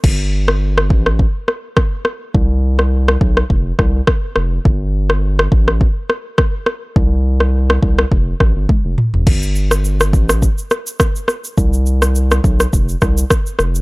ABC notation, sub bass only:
X:1
M:4/4
L:1/16
Q:"Swing 16ths" 1/4=104
K:Gmix
V:1 name="Sub bass" clef=bass
G,,,6 A,,,3 z6 z | C,,6 B,,,2 F,,,2 C,,2 z2 F,,,2 | G,,,6 A,,,3 z6 z | C,,6 C,,2 F,,,2 A,,, G,,, z F,,, z F,,, |
G,,,6 A,,,3 z6 z | C,,6 B,,,2 F,,,2 C,,2 z2 F,,,2 |]